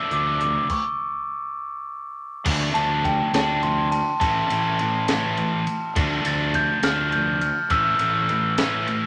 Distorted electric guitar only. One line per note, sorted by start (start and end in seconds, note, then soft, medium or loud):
0.00 0.38 F3 medium
0.00 0.39 A3 medium
0.00 0.39 D4 medium
0.41 0.67 F3 medium
0.41 0.67 A3 medium
2.45 3.02 F3 medium
2.45 3.02 A3 loud
2.45 3.02 D4 loud
3.04 3.30 F3 medium
3.04 3.30 A3 medium
3.33 3.61 F3 medium
3.33 3.61 A3 medium
3.33 3.61 D4 loud
3.63 3.89 F3 medium
3.63 3.89 A3 medium
4.20 4.77 E3 loud
4.20 4.77 A3 medium
4.20 4.77 C#4 loud
4.80 5.05 E3 medium
4.80 5.05 A3 loud
5.09 5.36 E3 medium
5.09 5.36 A3 loud
5.09 5.36 C#4 loud
5.37 5.63 E3 medium
5.37 5.64 A3 medium
5.96 6.52 F3 loud
5.96 6.52 A3 loud
5.96 6.52 D4 loud
6.54 6.80 F3 medium
6.54 6.81 A3 medium
6.84 7.11 F3 loud
6.84 7.11 A3 loud
6.84 7.11 D4 loud
7.13 7.39 F3 medium
7.13 7.39 A3 loud
7.70 8.27 E3 medium
7.70 8.27 A3 loud
7.70 8.27 C#4 loud
8.29 8.55 E3 medium
8.29 8.55 A3 medium
8.58 8.85 E3 medium
8.58 8.85 A3 medium
8.58 8.86 C#4 medium
8.86 9.06 E3 medium
8.86 9.06 A3 medium